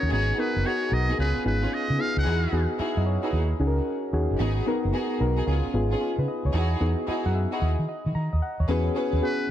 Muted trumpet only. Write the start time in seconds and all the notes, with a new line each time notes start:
Already playing: C#5
0.13 C#5
0.40 B4
0.67 C#5
0.93 D#5
1.20 B4
1.47 B4
1.74 D#5
2.01 F5
2.18 F#5
9.24 B4